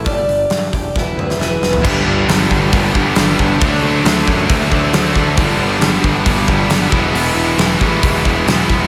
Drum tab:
CC |----------------|x---------------|----------------|----------------|
HH |o-o-o-o---------|----o---o---o---|o---o---o---o---|o---o---o---o---|
SD |----o---o--oo-o-|----o-------o---|----o-------o---|----o-------o---|
T2 |----------o-----|----------------|----------------|----------------|
FT |---------------o|----------------|----------------|----------------|
BD |o-----o-o-------|o-----o-o-o---o-|o-----o-o-o---o-|o-----o-o-o---o-|

CC |----------------|
HH |o---o---o---o---|
SD |----o-------o---|
T2 |----------------|
FT |----------------|
BD |------o-o-o---o-|